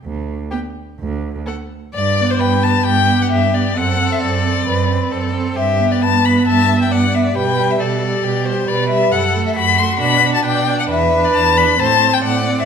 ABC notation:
X:1
M:4/4
L:1/16
Q:1/4=134
K:G
V:1 name="Violin"
z4 g4 z4 f4 | d3 c g2 a2 g3 f e2 d2 | f3 e d8- d2 z2 | e3 d a2 b2 a3 g f2 e2 |
g3 e d6 c2 d2 e2 | f3 e b2 c'2 b3 a g3 f | e3 d a2 b2 a3 g f3 e |]
V:2 name="Violin"
z4 G4 z4 A4 | d4 B4 G8 | A8 B4 A4 | G4 B4 e4 d4 |
B4 A4 G4 B4 | A4 F8 d4 | B8 c4 d4 |]
V:3 name="Viola"
z4 B,4 z4 A,4 | z2 B,4 B,4 B,4 B,2 | C2 C4 C4 C4 C2 | z2 B,4 B,4 B,4 B,2 |
G,2 G,4 G,4 G,4 G,2 | z2 A,4 A,2 D2 D4 D2 | z2 D4 D2 C2 C4 C2 |]
V:4 name="Cello" clef=bass
D,,4 z4 D,,4 z4 | G,,4 G,,4 G,,4 G,,4 | F,,4 F,,4 F,,4 F,,4 | G,,4 G,,4 G,,4 G,,4 |
B,,4 B,,4 B,,4 B,,4 | F,,4 F,,4 B,,4 B,,4 | E,,4 E,,4 A,,4 A,,4 |]